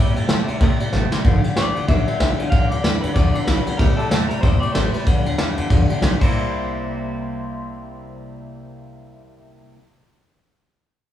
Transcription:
Already playing: upright bass G2, clean electric guitar C3 G3, steel-string acoustic guitar C3 G3
0.00 steel-string acoustic guitar A#3 E4 G4
0.16 upright bass G2, clean electric guitar C3 G3, steel-string acoustic guitar A#3 E4 G4, ride
0.29 upright bass A2, clean electric guitar C3 A3, steel-string acoustic guitar G3 A#3 E4 G4, snare, ride
0.48 upright bass A#2, clean electric guitar C3 G3, steel-string acoustic guitar A#3 E4 G4, ride
0.60 upright bass A2, clean electric guitar C3 G3, steel-string acoustic guitar C3 G3 A#3 E4 G4, kick, ride
0.80 clean electric guitar C3 G3, steel-string acoustic guitar A#3 E4 G4, muted upright bass stroke, ride
0.92 upright bass A1, clean electric guitar C3 A3, steel-string acoustic guitar G3 A#3 E4 G4, snare
1.12 clean electric guitar C3 G3, steel-string acoustic guitar A#3 E4 G4, snare
1.24 upright bass G1, clean electric guitar G2 D3, steel-string acoustic guitar G2 D3 F3 B3 F4 G4, kick, ride
1.43 clean electric guitar G2 D3, steel-string acoustic guitar F3 B3 F4 G4, muted upright bass stroke, ride
1.56 upright bass B1, clean electric guitar G2 E3 D5, steel-string acoustic guitar F3 B3 F4, snare, ride
1.60 steel-string acoustic guitar G4
1.75 upright bass F1, clean electric guitar G2 D3, steel-string acoustic guitar B3 F4 G4, ride
1.79 steel-string acoustic guitar F3
1.88 upright bass B1, clean electric guitar G2 D3 E5, steel-string acoustic guitar G2 D3 F3 B3 F4 G4, kick, ride
2.07 clean electric guitar G2 D3, steel-string acoustic guitar F3 B3 F4 G4, muted upright bass stroke, ride
2.19 upright bass B1, clean electric guitar G2 E3, steel-string acoustic guitar F3 B3 F4 G4, snare, ride
2.38 clean electric guitar G2 D3, steel-string acoustic guitar F3 B3 F4 G4, muted upright bass stroke, ride
2.50 upright bass D2, clean electric guitar G2 D3 F5, steel-string acoustic guitar G2 D3 F3 B3 F4 G4, kick, ride
2.69 upright bass D2, clean electric guitar G2 D3 D5, steel-string acoustic guitar F4 G4, ride
2.73 steel-string acoustic guitar F3 B3
2.83 upright bass E2, clean electric guitar G2 E3, steel-string acoustic guitar F3 B3 F4 G4, snare, ride
3.01 upright bass F2, clean electric guitar G2 D3 B4, steel-string acoustic guitar F3 B3 F4 G4, ride
3.14 upright bass E2, clean electric guitar G2 D3 D5, steel-string acoustic guitar G2 D3 F3 B3 F4 G4, kick, ride
3.33 clean electric guitar G2 D3 D5, steel-string acoustic guitar B3 F4 G4, muted upright bass stroke, ride
3.38 steel-string acoustic guitar F3
3.45 upright bass B1, clean electric guitar G2 E3 B4, steel-string acoustic guitar F3 B3 F4, snare, ride
3.50 steel-string acoustic guitar G4
3.65 clean electric guitar G2 D3, steel-string acoustic guitar F3 B3 F4 G4, muted upright bass stroke, ride
3.77 upright bass C2, clean electric guitar C3 G3 A#4, steel-string acoustic guitar C3 G3 A#3 E4, kick, ride
3.81 steel-string acoustic guitar G4
3.97 clean electric guitar C3 G3 A4, steel-string acoustic guitar E4 G4, ride
4.02 steel-string acoustic guitar A#3
4.09 upright bass E2, clean electric guitar C3 A3 A4, steel-string acoustic guitar G3 A#3 E4, snare, ride
4.14 steel-string acoustic guitar G4
4.29 upright bass A#1, clean electric guitar C3 G3 A#4, steel-string acoustic guitar E4 G4, ride
4.33 steel-string acoustic guitar A#3
4.41 upright bass E2, clean electric guitar C3 G3 C5, steel-string acoustic guitar C3 G3 A#3 E4 G4, kick, ride
4.60 clean electric guitar C3 G3 D5, steel-string acoustic guitar E4 G4, muted upright bass stroke, ride
4.65 steel-string acoustic guitar A#3
4.72 upright bass A1, clean electric guitar C3 A3 C5, steel-string acoustic guitar G3 A#3, snare, ride
4.77 steel-string acoustic guitar E4 G4
4.92 clean electric guitar C3 G3 B4, steel-string acoustic guitar E4 G4, muted upright bass stroke, ride
4.97 steel-string acoustic guitar A#3
5.06 upright bass G1, clean electric guitar G2 D3, steel-string acoustic guitar G2 D3 F3 B3 F4 G4, kick, ride
5.25 upright bass D2, clean electric guitar G2 D3, steel-string acoustic guitar F3 B3 F4 G4, ride
5.38 clean electric guitar G2 E3, steel-string acoustic guitar F3 B3 F4 G4, snare, ride
5.57 upright bass F2, clean electric guitar G2 D3, steel-string acoustic guitar F3 B3 F4 G4, ride
5.70 upright bass E2, steel-string acoustic guitar G2 D3 F3 B3 F4 G4, clean electric guitar G2 D3, kick, ride
5.89 clean electric guitar G2 D3, steel-string acoustic guitar F3 B3 F4 G4, ride
6.01 upright bass B1, clean electric guitar G2 E3, steel-string acoustic guitar F3 B3 F4 G4, snare, ride
6.19 steel-string acoustic guitar C3 G3 A#3, clean electric guitar C3 G3 A#3 C5, kick, crash
6.24 steel-string acoustic guitar E4 G4, clean electric guitar E4

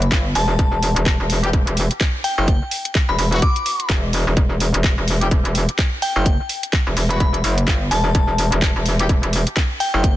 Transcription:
Already playing: wobble bass F#1
0.02 closed hi-hat
0.12 wobble bass G1, kick, clap, closed hi-hat
0.35 wobble bass E1, synth bell A5, open hi-hat
0.59 wobble bass E1, kick, closed hi-hat
0.83 open hi-hat
0.96 wobble bass E1, closed hi-hat
1.06 kick, clap, closed hi-hat
1.20 wobble bass E1
1.30 open hi-hat
1.44 horn section G3 B3 E4 G4, closed hi-hat
1.53 wobble bass E1, kick, closed hi-hat
1.67 wobble bass E1, closed hi-hat
1.77 open hi-hat
1.91 closed hi-hat
2.01 kick, clap, closed hi-hat
2.24 synth bell G5, open hi-hat
2.38 wobble bass F#1, synth bell G5
2.48 kick, closed hi-hat
2.71 open hi-hat
2.85 closed hi-hat
2.95 kick, clap, closed hi-hat
3.09 wobble bass E1, synth bell B5
3.19 wobble bass E1, synth bell B5, open hi-hat
3.32 horn section F#3 B3 E4 F#4, closed hi-hat
3.42 synth bell D6, kick, closed hi-hat
3.56 closed hi-hat
3.66 open hi-hat
3.80 closed hi-hat
3.90 wobble bass E1, kick, clap, closed hi-hat
4.13 open hi-hat
4.27 wobble bass E1
4.37 wobble bass E1, kick, closed hi-hat
4.60 open hi-hat
4.74 wobble bass E1, closed hi-hat
4.84 kick, clap, closed hi-hat
4.98 wobble bass E1
5.08 open hi-hat
5.21 horn section G3 B3 E4 G4, closed hi-hat
5.31 wobble bass E1, kick, closed hi-hat
5.45 wobble bass E1, closed hi-hat
5.55 open hi-hat
5.69 closed hi-hat
5.79 kick, clap, closed hi-hat
6.02 synth bell G5, open hi-hat
6.16 wobble bass F#1, synth bell G5
6.26 kick, closed hi-hat
6.49 open hi-hat
6.63 closed hi-hat
6.73 kick, clap, closed hi-hat
6.87 wobble bass E1
6.97 wobble bass E1, open hi-hat
7.10 horn section F#3 B3 E4 F#4, synth bell B5, closed hi-hat
7.20 wobble bass E1, synth bell B5, kick, closed hi-hat
7.34 closed hi-hat
7.44 wobble bass F#1, open hi-hat
7.58 closed hi-hat
7.68 wobble bass G1, kick, clap, closed hi-hat
7.91 wobble bass E1, synth bell A5, open hi-hat
8.15 wobble bass E1, kick, closed hi-hat
8.38 open hi-hat
8.52 wobble bass E1, closed hi-hat
8.62 kick, clap, closed hi-hat
8.76 wobble bass E1
8.86 open hi-hat
8.99 horn section G3 B3 E4 G4, closed hi-hat
9.09 wobble bass E1, kick, closed hi-hat
9.23 wobble bass E1, closed hi-hat
9.33 open hi-hat
9.47 closed hi-hat
9.57 kick, clap, closed hi-hat
9.80 synth bell G5, open hi-hat
9.94 wobble bass F#1, synth bell G5
10.04 kick, closed hi-hat, noise sweep

